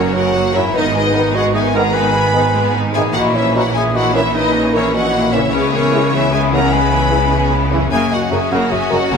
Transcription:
Already playing: double bass section F#1, harp F#2 F#3 C#4 F#4 C#5, cello section F#2, viola section F#3 A#3, violin section A#3 F#4 C#5, clarinet C#4, flute A#4
0.13 viola section C#3 F#3, violin section C#4 A#4 F#5, clarinet F#4, flute C#5
0.34 viola section F#3 A#3, violin section A#3 F#4
0.53 trombone section F#2 F#3, harp G#2, viola section C#3 F#3, french horn section C#4 A#4, violin section C#4 A#4 E5, clarinet E4, flute C#5
0.61 harp B3
0.66 harp D#4
0.70 viola section D#3 B3, violin section D#4, harp B4, flute B4
0.75 double bass section G#1, cello section G#2, clarinet D#4, violin section D#5
0.93 viola section G#3, violin section B3 G#4, flute B4
0.97 clarinet D#4, violin section D#5
1.13 trombone section G#2 D#3, viola section D#3 B3, french horn section B3 B4, violin section D#4
1.33 viola section G#3, violin section B3 G#4, clarinet F#4, flute D#5
1.37 violin section F#5
1.53 viola section D#3 B3, violin section D#4 G#5, clarinet G#4, flute E5
1.74 trombone section G#2 D#3, viola section G#3, french horn section B3 B4, violin section B3 G#4 A#5, clarinet A#4, flute F#5
1.93 viola section D#3 B3, violin section D#4 B5, clarinet B4, flute G#5
2.13 viola section G#3, violin section B3 G#4
2.33 trombone section G#2 D#3, viola section D#3 B3, french horn section B3 B4, violin section D#4
2.54 viola section G#3, violin section B3 G#4
2.73 viola section D#3 B3, violin section D#4
2.93 trombone section G#2 D#3, viola section G#3, french horn section B3 B4, violin section B3 G#4 G#5, clarinet G#4, flute E5
2.97 harp A#2
3.02 harp C#4
3.06 harp E3
3.11 cello section A#2, viola section E3 A#3, violin section F#5, harp A#5
3.16 double bass section A#1, violin section A#3 E4, clarinet F#4, flute D#5
3.33 viola section E3 C#4, violin section C#4 E5, clarinet E4, flute C#5
3.53 trombone section A#2 E3, viola section E3 A#3, violin section A#3 E4 F#5, french horn section C#4 A#4, clarinet F#4, flute D#5
3.74 viola section E3 C#4, violin section C#4 G#5, clarinet G#4, flute E5
3.94 viola section E3 A#3, violin section A#3 E4 F#5, clarinet F#4, flute D#5
4.13 trombone section A#2 E3, viola section E3 C#4, french horn section C#4 A#4, violin section C#4 E5, clarinet E4, flute C#5
4.34 viola section E3 A#3, violin section A#3 E4 D#5, clarinet D#4, flute B4
4.53 viola section E3 C#4, violin section C#4
4.73 trombone section A#2 E3, viola section E3 A#3, violin section A#3 E4 C#5, french horn section C#4 A#4, clarinet C#4, flute A#4
4.94 viola section E3 C#4, violin section C#4 F#5, clarinet F#4, flute D#5
5.13 viola section E3 A#3, violin section A#3 E4
5.32 trombone section A#2 E3, harp C#3, viola section E3 C#4, violin section C#4 E5, french horn section C#4 A#4, clarinet E4, flute C#5
5.40 harp C#4
5.44 harp E4
5.49 violin section B3 E4 C#5, harp G#4, flute G#4
5.54 double bass section C#2, cello section C#3, viola section G#3, clarinet C#4
5.73 viola section E3 B3, violin section C#4 G#4 C#5, clarinet C#4, flute A#4
5.92 trombone section C#3 E3, viola section G#3, violin section B3 E4, french horn section C#4 G#4
6.13 viola section E3 B3, violin section C#4 G#4 E5, clarinet E4, flute C#5
6.32 viola section G#3, violin section B3 E4 G#5, clarinet G#4, flute E5
6.51 trombone section C#3 E3, viola section E3 B3, french horn section C#4 G#4, violin section C#4 G#4 A#5, flute F#5
6.56 clarinet A#4
6.72 viola section G#3, violin section B3 E4 B5, clarinet B4, flute G#5
6.93 viola section E3 B3, violin section C#4 G#4
7.10 trombone section C#3 E3, viola section G#3, violin section B3 E4, french horn section C#4 G#4
7.32 viola section E3 B3, violin section C#4 G#4
7.51 viola section G#3, violin section B3 E4
7.71 trombone section C#3 E3, viola section E3 B3, french horn section C#4 G#4, violin section C#4 G#4
7.75 harp F#2
7.80 harp C#4
7.84 harp F#4
7.89 cello section F#2, viola section C#3 A#3, violin section C#4 F#4 G#5, harp A#4, flute E5
7.93 double bass section F#1, clarinet G#4
8.12 clarinet F#4, flute D#5, violin section F#5
8.30 double bass section F#1, cello section F#2, trombone section C#3 F#3, viola section C#3, french horn section C#4 A#4, clarinet G#4, flute E5, violin section G#5
8.51 double bass section F#1, cello section F#2, viola section C#3 A#3, clarinet A#4, flute F#5, violin section A#5
8.70 double bass section F#1, cello section F#2, viola section C#3 F#3, clarinet G#4, flute E5, violin section G#5
8.90 double bass section F#1, cello section F#2, viola section C#3, trombone section C#3 F#3, french horn section C#4 A#4, clarinet F#4, flute D#5
8.95 violin section F#5
9.11 double bass section F#1, cello section F#2, viola section C#3 A#3, clarinet A#4, flute F#5, violin section A#5

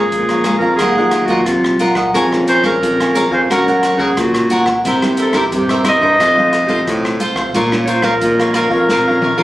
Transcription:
Already playing: nylon-string guitar G#3 C#4 F4, clarinet G#4
0.12 baritone saxophone A#2, nylon-string guitar F3, kick, closed hi-hat
0.29 cavaquinho C#5 F5 A#5, cross-stick, closed hi-hat
0.44 nylon-string guitar G#3 C#4 F4, cavaquinho G#4 C#5 F5 A#5, cross-stick, closed hi-hat
0.58 baritone saxophone F2, clarinet A#4, cavaquinho A#5, kick
0.62 cavaquinho C#5 F5
0.76 baritone saxophone D#2, nylon-string guitar D#3, cavaquinho F4, clarinet G#4, kick, cross-stick, closed hi-hat
0.80 nylon-string guitar F#3 A#3 F4, cavaquinho A#4 D#5 F#5
0.97 nylon-string guitar F#3 A#3 F4, cavaquinho A#4 D#5 F#5
1.11 cavaquinho F4 A#4 D#5 F#5, cross-stick, closed hi-hat
1.25 baritone saxophone A#2, nylon-string guitar F#3 A#3, cavaquinho F4, clarinet F#4, kick, closed hi-hat
1.29 nylon-string guitar F4, cavaquinho A#4 D#5 F#5
1.46 nylon-string guitar A#2, baritone saxophone C3, clarinet F4, kick, cross-stick, closed hi-hat
1.64 cross-stick
1.79 nylon-string guitar F#3 A#3 F4, cavaquinho F4 A#4 D#5 F#5, closed hi-hat
1.95 cavaquinho A#4 D#5 F#5, kick, cross-stick
2.14 baritone saxophone F2, nylon-string guitar F3 A#3 C#4 G#4, cavaquinho A#4 C#5 F5 G#5, kick, closed hi-hat
2.32 nylon-string guitar A#3 C#4 G#4, cross-stick
2.47 cavaquinho A#4 C#5 F5 G#5, clarinet C5, closed hi-hat
2.64 nylon-string guitar A#3 C#4 G#4, cavaquinho A#4 C#5 F5 G#5, clarinet A#4, kick, cross-stick
2.83 baritone saxophone F2, nylon-string guitar F3, kick, closed hi-hat
3.00 cavaquinho C#5 F5 G#5, cross-stick, closed hi-hat
3.14 nylon-string guitar A#3 C#4 G#4, cavaquinho A#4 C#5 F5 G#5, closed hi-hat
3.29 baritone saxophone F2, cavaquinho C#5 F5 G#5, kick
3.33 clarinet C5
3.49 baritone saxophone F#2, nylon-string guitar F#3 A#3 C#4 F#4, cavaquinho F#4 A#4 C#5 F#5, clarinet A#4, kick, cross-stick, closed hi-hat
3.67 nylon-string guitar A#3 C#4 F#4, cavaquinho A#4 C#5 F#5, closed hi-hat
3.83 cavaquinho F#4 A#4 C#5 F#5, cross-stick, closed hi-hat
3.96 baritone saxophone C#3, nylon-string guitar A#3 C#4 F#4, cavaquinho F#4 A#4 C#5 F#5, clarinet G#4, kick
4.17 baritone saxophone A#2, nylon-string guitar C#3, clarinet F#4, kick, cross-stick, closed hi-hat
4.34 cross-stick, closed hi-hat
4.50 nylon-string guitar A#3 C#4 F#4, cavaquinho F#4 A#4 C#5 F#5, closed hi-hat
4.66 cavaquinho A#4 C#5 F#5, kick, cross-stick
4.85 nylon-string guitar C3 A#3 E4 G4, baritone saxophone C3, cavaquinho E4 A#4 C5 E5, kick, closed hi-hat
5.02 nylon-string guitar A#3 E4 G4, cross-stick, closed hi-hat
5.17 cavaquinho E4 A#4 C5 E5, closed hi-hat
5.21 clarinet A4
5.32 nylon-string guitar A#3 E4 G4, cavaquinho E4 A#4 C5 E5, kick, cross-stick, closed hi-hat
5.37 clarinet G4
5.51 nylon-string guitar G2, baritone saxophone C3, kick, closed hi-hat
5.57 clarinet G4
5.69 cavaquinho A#4 C5 E5, cross-stick, closed hi-hat
5.84 nylon-string guitar A#3 E4 G4, cavaquinho E4 A#4 C5 E5, cross-stick, closed hi-hat
5.89 clarinet D#5
5.99 baritone saxophone G2, cavaquinho A#4 C5 E5, kick
6.18 baritone saxophone F2, nylon-string guitar F3 A3 C4 F4, cavaquinho F4 A4 C5 F5, kick, cross-stick, closed hi-hat
6.37 nylon-string guitar A3 C4 F4, cavaquinho A4 C5 F5
6.52 cavaquinho F4 A4 C5 F5, cross-stick, closed hi-hat
6.66 baritone saxophone C3, nylon-string guitar A3 C4 F4, cavaquinho F4 A4 C5 F5, kick, closed hi-hat
6.87 baritone saxophone A2, nylon-string guitar C3, kick, cross-stick, closed hi-hat
7.05 cross-stick
7.20 nylon-string guitar A3 C4 F4, cavaquinho F4 A4 C5 F5, closed hi-hat
7.36 cavaquinho A4 C5 F5, kick, cross-stick
7.54 nylon-string guitar A#2 A#3 C#4 F4, baritone saxophone A#2, cavaquinho F4 A#4 C#5 F5, kick, closed hi-hat
7.72 nylon-string guitar A#3 C#4 F4, cross-stick
7.85 cavaquinho F4 A#4 C#5 F5, clarinet C#5, closed hi-hat
7.90 clarinet C5
8.02 nylon-string guitar A#3 C#4 F4, cavaquinho F4 A#4 C#5 F5, clarinet A#4, kick, cross-stick
8.21 nylon-string guitar F2, baritone saxophone A#2, kick, closed hi-hat
8.40 cavaquinho A#4 C#5 F5, cross-stick, closed hi-hat
8.54 nylon-string guitar A#3 C#4 F4, cavaquinho F4 A#4 C#5 F5, clarinet A#4, cross-stick, closed hi-hat
8.68 baritone saxophone F2, cavaquinho C#5 F5, kick
8.72 cavaquinho A#4, clarinet A#4
8.89 baritone saxophone F2, nylon-string guitar A#2, cavaquinho F4 A#4 C#5 F5, kick, snare
9.08 nylon-string guitar A#3 C#4 F4, cavaquinho A#4 C#5 F5
9.22 cavaquinho F4 A#4 C#5 F5, high tom
9.38 baritone saxophone F2, nylon-string guitar A#3 C#4, cavaquinho F4 A#4 C#5 F5

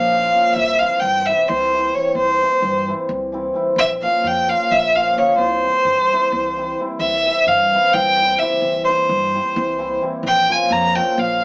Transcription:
Already playing: upright bass A#1, hammered dulcimer F3, violin F5
0.13 hammered dulcimer F3 A#3 C#4 F4
0.34 hammered dulcimer F3 A#3 C#4 F4
0.54 upright bass C2, violin E5
0.79 hammered dulcimer E3 G3 C4 E4, violin F5
1.00 upright bass G2, violin G5
1.26 hammered dulcimer E3 G3 C4 E4, violin E5
1.49 upright bass C2, violin C5
1.72 hammered dulcimer E3 G3 C4 E4
1.94 hammered dulcimer E3 G3 C4 E4, violin C#5
2.15 upright bass C2, violin C5
2.42 hammered dulcimer E3 G3 C4 E4
2.62 upright bass G2
2.88 hammered dulcimer E3 G3 C4 E4
3.09 upright bass C2
3.32 hammered dulcimer E3 G3 C4 E4
3.54 hammered dulcimer E3 G3 C4 E4
3.76 upright bass A#1, violin E5
4.02 hammered dulcimer F3 A#3 C#4 F4, violin F5
4.24 upright bass F2, violin G5
4.47 hammered dulcimer F3 A#3 C#4 F4, violin F5
4.71 upright bass A#1, violin E5
4.95 hammered dulcimer F3 A#3 C#4 F4, violin F5
5.16 hammered dulcimer F3 A#3 C#4 F4, violin C#5
5.38 upright bass C2, violin C5
5.63 hammered dulcimer E3 G3 C4 E4
5.85 upright bass G2
6.12 hammered dulcimer E3 G3 C4 E4
6.32 upright bass C2
6.57 hammered dulcimer E3 G3 C4 E4
6.79 hammered dulcimer E3 G3 C4 E4
7.00 upright bass C2, violin E5
7.25 hammered dulcimer E3 G3 C4 E4
7.47 upright bass G2, violin F5
7.73 hammered dulcimer E3 G3 C4 E4
7.93 upright bass C2, violin G5
8.20 hammered dulcimer E3 G3 C4 E4
8.39 hammered dulcimer E3 G3 C4 E4, violin E5
8.61 upright bass C2
8.85 hammered dulcimer E3 G3 C4, violin C5
8.89 hammered dulcimer E4
9.09 upright bass G2
9.34 hammered dulcimer E3 G3 C4 E4
9.56 upright bass C2
9.78 hammered dulcimer E3 G3 C4 E4
10.02 hammered dulcimer E3 G3 C4 E4
10.23 upright bass A#1
10.27 violin G5
10.48 hammered dulcimer F3 A#3 C#4 F4, violin G#5
10.70 upright bass F2, violin A#5
10.95 hammered dulcimer F3 A#3 C#4 F4, violin G5
11.18 upright bass A#1, violin F5
11.41 hammered dulcimer F3

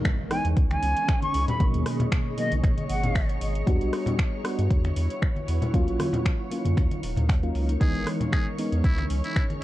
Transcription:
Already playing: fm electric piano E3 G#3 B3 D#4, ambient pad C#4 D#4 G#4 A#4, string machine C#5 C#6, impact
0.05 finger snap, kick, closed hi-hat
0.20 ambient pad D#5
0.30 fm electric piano E3 G#3 B3 D#4, flute G#5, cross-stick, open hi-hat
0.45 analog synth bass E2, closed hi-hat
0.57 analog synth bass C#2, kick, closed hi-hat
0.71 flute G#5, finger snap, closed hi-hat, high conga
0.83 analog synth bass C#2, open hi-hat
0.96 closed hi-hat
1.08 finger snap, kick, closed hi-hat
1.22 flute C#6, closed hi-hat, high conga
1.34 analog synth bass C#2, open hi-hat
1.48 flute B5, closed hi-hat, low conga
1.59 analog synth bass G#1, fm electric piano B2 D#3 F#3 A#3, kick, closed hi-hat
1.74 analog synth bass D#2, closed hi-hat
1.86 cross-stick, open hi-hat
2.00 closed hi-hat, low conga
2.12 finger snap, kick, closed hi-hat
2.37 fm electric piano B2 D#3 F#3 A#3, flute D#5, open hi-hat
2.51 analog synth bass B1, closed hi-hat, high conga
2.64 analog synth bass G#1, finger snap, kick, closed hi-hat
2.78 closed hi-hat, high conga
2.89 analog synth bass G#1, flute F#5, open hi-hat
3.03 closed hi-hat, low conga
3.15 finger snap, kick, open hi-hat
3.29 closed hi-hat
3.41 analog synth bass G#1, open hi-hat
3.55 closed hi-hat
3.66 analog synth bass E2, fm electric piano G3 B3 D4 F#4, ambient pad E4, kick, closed hi-hat
3.81 analog synth bass B1, closed hi-hat
3.93 cross-stick, open hi-hat
4.06 ambient pad B4, closed hi-hat, low conga
4.19 finger snap, kick, closed hi-hat
4.44 fm electric piano G3 B3 D4 F#4, cross-stick, open hi-hat
4.59 analog synth bass G2, closed hi-hat
4.70 analog synth bass E2, kick, closed hi-hat
4.84 finger snap, closed hi-hat, high conga
4.96 analog synth bass E2, open hi-hat
5.10 closed hi-hat
5.22 finger snap, kick, closed hi-hat
5.36 closed hi-hat, high conga
5.48 analog synth bass E2, open hi-hat
5.62 closed hi-hat, low conga
5.73 analog synth bass D#2, fm electric piano F#3 A#3 C#4 F4, ambient pad D#4, kick, closed hi-hat
5.88 analog synth bass A#1, closed hi-hat
5.94 ambient pad F5
6.00 cross-stick, open hi-hat, high conga
6.13 closed hi-hat, low conga
6.26 finger snap, kick, closed hi-hat
6.40 ambient pad A#4
6.51 fm electric piano F#3 A#3 C#4 F4, open hi-hat
6.65 analog synth bass F#2, closed hi-hat, high conga
6.77 analog synth bass D#2, finger snap, kick, closed hi-hat
6.91 closed hi-hat, high conga
7.03 analog synth bass D#1, open hi-hat
7.17 analog synth bass D#2, closed hi-hat, low conga
7.29 finger snap, kick, open hi-hat
7.43 fm electric piano F#3 A#3 C#4 F4, closed hi-hat
7.55 analog synth bass C#2, open hi-hat
7.69 closed hi-hat
7.80 analog synth bass C#2, fm electric piano E3 G#3 B3 D#4, ambient pad C#4, muted trumpet G#4, string machine C#5 C#6, kick, closed hi-hat
7.95 analog synth bass G#1, closed hi-hat
8.07 cross-stick, open hi-hat
8.20 closed hi-hat, low conga
8.26 ambient pad D#5
8.32 muted trumpet G#4, finger snap, kick, closed hi-hat
8.38 ambient pad G#4
8.58 fm electric piano E3 G#3 B3 D#4, open hi-hat
8.72 analog synth bass E2, closed hi-hat
8.84 analog synth bass C#2, muted trumpet E4, kick, closed hi-hat
8.98 finger snap, closed hi-hat, high conga
9.10 analog synth bass C#2, open hi-hat
9.24 muted trumpet E4, closed hi-hat
9.36 finger snap, kick, closed hi-hat
9.50 closed hi-hat, high conga

